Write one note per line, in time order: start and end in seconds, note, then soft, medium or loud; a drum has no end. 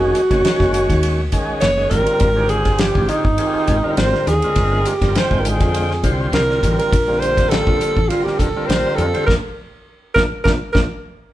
0.00 0.12 F1 medium
0.00 0.21 D#3 medium
0.00 0.21 G#3 medium
0.00 0.21 C#4 medium
0.00 0.21 F#4 medium
0.00 1.36 F#4 medium
0.00 0.21 G#4 medium
0.15 hi-hat pedal medium
0.15 ride medium
0.30 0.43 F1 medium
0.30 0.42 D#3 medium
0.30 0.42 G#3 medium
0.30 0.43 C#4 medium
0.30 0.42 F#4 medium
0.30 0.43 C#5 medium
0.30 kick medium
0.30 snare soft
0.30 ride medium
0.44 1.21 D#3 medium
0.44 1.21 G#3 medium
0.44 1.21 C#4 medium
0.44 1.21 F#4 medium
0.44 1.21 C#5 medium
0.44 snare loud
0.44 ride medium
0.60 0.86 F#1 medium
0.60 kick medium
0.60 snare soft
0.74 hi-hat pedal medium
0.74 ride medium
0.90 1.32 D#2 medium
0.90 kick medium
0.90 snare soft
0.90 ride medium
1.03 ride medium
1.32 1.59 A#1 medium
1.32 1.71 D#3 medium
1.32 1.71 G#3 medium
1.32 1.71 C#4 medium
1.32 1.71 F#4 medium
1.32 1.71 G#4 loud
1.32 kick medium
1.32 hi-hat pedal medium
1.32 ride medium
1.60 1.89 F#1 medium
1.60 1.88 C#5 medium
1.60 snare loud
1.60 ride medium
1.77 1.91 D#3 medium
1.77 1.91 G#3 medium
1.77 1.91 C#4 medium
1.77 1.91 F#4 medium
1.77 1.91 G#4 medium
1.90 2.06 G#1 medium
1.90 2.30 D3 medium
1.90 2.30 G3 medium
1.90 2.30 C4 medium
1.90 2.30 F4 medium
1.90 2.51 A#4 medium
1.90 2.30 A#4 medium
1.90 kick medium
1.90 snare soft
1.90 hi-hat pedal medium
1.90 ride medium
2.07 ride medium
2.20 2.66 G#1 medium
2.20 kick loud
2.20 ride medium
2.35 3.25 D3 medium
2.35 3.25 C4 medium
2.35 3.25 F4 medium
2.35 3.25 G4 medium
2.35 3.25 G#4 medium
2.49 2.81 G#4 medium
2.49 hi-hat pedal medium
2.49 ride medium
2.65 2.93 G1 medium
2.65 kick medium
2.65 snare soft
2.65 ride medium
2.78 3.10 G4 medium
2.78 snare loud
2.78 ride medium
2.95 3.08 G#1 medium
2.95 kick medium
3.08 3.97 D#4 medium
3.08 hi-hat pedal medium
3.08 ride soft
3.24 3.37 G1 medium
3.24 kick medium
3.38 3.77 D#3 medium
3.38 3.77 C4 medium
3.38 3.78 F4 medium
3.38 3.77 G4 medium
3.38 3.77 G#4 medium
3.38 ride medium
3.55 muted fretless electric bass stroke soft
3.67 3.83 G#1 medium
3.67 kick medium
3.67 hi-hat pedal medium
3.67 ride medium
3.83 4.34 D3 medium
3.83 4.34 G3 medium
3.83 4.34 C4 medium
3.83 4.34 F4 medium
3.83 4.34 A#4 medium
3.83 muted fretless electric bass stroke soft
3.97 4.12 G#1 medium
3.97 4.29 C5 medium
3.97 snare loud
3.97 ride medium
4.14 snare soft
4.27 4.41 D#2 medium
4.27 4.89 G#4 medium
4.27 snare soft
4.27 hi-hat pedal medium
4.27 ride medium
4.42 4.94 D3 medium
4.42 4.94 G#3 medium
4.42 4.94 C4 medium
4.42 4.94 F4 medium
4.42 4.94 A#4 medium
4.42 muted fretless electric bass stroke soft
4.42 ride medium
4.56 4.83 G1 medium
4.56 kick medium
4.56 ride medium
4.85 5.19 G4 medium
4.85 hi-hat pedal medium
4.85 ride medium
5.02 5.14 G1 medium
5.02 5.14 D3 medium
5.02 5.14 G3 medium
5.02 5.14 C4 medium
5.02 5.14 F4 medium
5.02 5.14 A#4 medium
5.02 kick medium
5.02 snare soft
5.02 ride medium
5.15 5.93 D3 medium
5.15 5.93 G#3 medium
5.15 5.93 C4 medium
5.15 5.93 F4 medium
5.15 5.41 C5 medium
5.15 5.93 G5 medium
5.15 snare loud
5.15 ride medium
5.31 5.58 G#1 medium
5.31 kick medium
5.40 5.50 A#4 medium
5.45 6.09 G#4 medium
5.45 hi-hat pedal medium
5.45 ride medium
5.60 6.05 F2 medium
5.60 kick medium
5.60 ride medium
5.74 ride medium
5.91 snare soft
6.03 6.31 C2 medium
6.03 6.42 D3 medium
6.03 6.42 G3 medium
6.03 6.43 C4 medium
6.03 6.43 F4 medium
6.03 6.43 C5 medium
6.03 kick medium
6.03 hi-hat pedal medium
6.03 ride medium
6.32 6.60 C2 medium
6.32 6.76 A#4 medium
6.32 snare loud
6.32 ride medium
6.49 6.92 D3 medium
6.49 6.93 G3 medium
6.49 6.93 C4 medium
6.49 6.93 F4 medium
6.49 6.93 A#4 medium
6.49 snare soft
6.63 6.77 A1 medium
6.63 kick medium
6.63 hi-hat pedal medium
6.63 ride medium
6.79 7.21 A#4 medium
6.79 ride medium
6.93 7.38 A#1 medium
6.93 kick loud
6.93 ride medium
7.07 7.97 D3 medium
7.07 7.97 G3 medium
7.07 7.97 A#3 medium
7.07 7.97 C4 medium
7.07 7.97 F4 medium
7.20 7.51 C5 medium
7.20 hi-hat pedal medium
7.20 ride medium
7.37 7.64 A1 medium
7.37 kick medium
7.37 snare soft
7.37 ride medium
7.49 8.10 A4 medium
7.49 snare loud
7.49 ride medium
7.67 7.80 A#1 medium
7.67 kick medium
7.81 hi-hat pedal medium
7.81 ride medium
7.97 8.09 A1 medium
7.97 kick medium
8.09 8.49 D3 medium
8.09 8.49 G3 medium
8.09 8.49 C4 medium
8.09 8.25 F4 medium
8.09 8.49 F4 medium
8.09 8.49 A#4 medium
8.09 ride medium
8.24 8.40 G4 medium
8.24 muted fretless electric bass stroke soft
8.24 snare soft
8.39 8.54 A#1 medium
8.39 8.69 A4 medium
8.39 kick medium
8.39 hi-hat pedal medium
8.39 ride medium
8.56 9.06 D3 medium
8.56 9.06 G3 medium
8.56 9.06 C4 medium
8.56 9.06 F4 medium
8.56 9.06 A#4 medium
8.56 muted fretless electric bass stroke soft
8.67 8.83 A#1 medium
8.67 8.97 C5 medium
8.67 snare loud
8.67 ride medium
8.96 9.13 F2 medium
8.96 9.26 A4 medium
8.96 hi-hat pedal medium
8.96 ride soft
9.13 9.27 D3 medium
9.13 9.28 G3 medium
9.13 9.28 C4 medium
9.13 9.28 F4 medium
9.13 9.28 C5 medium
9.13 muted fretless electric bass stroke soft
9.13 ride medium
9.26 9.40 A#1 medium
9.26 9.38 A3 medium
9.26 9.38 A#3 medium
9.26 9.38 D4 medium
9.26 9.34 A#4 medium
9.26 kick medium
9.26 snare medium
10.14 10.28 A#1 medium
10.14 10.26 A3 medium
10.14 10.26 A#3 medium
10.14 10.26 D4 medium
10.14 10.22 A#4 medium
10.14 kick medium
10.14 snare medium
10.44 10.57 A#1 medium
10.44 10.55 A3 medium
10.44 10.55 A#3 medium
10.44 10.55 D4 medium
10.44 10.52 A#4 medium
10.44 kick medium
10.44 snare medium
10.72 10.87 A#1 medium
10.72 10.85 A3 medium
10.72 10.85 A#3 medium
10.72 10.85 D4 medium
10.72 10.81 A#4 medium
10.72 kick medium
10.72 snare medium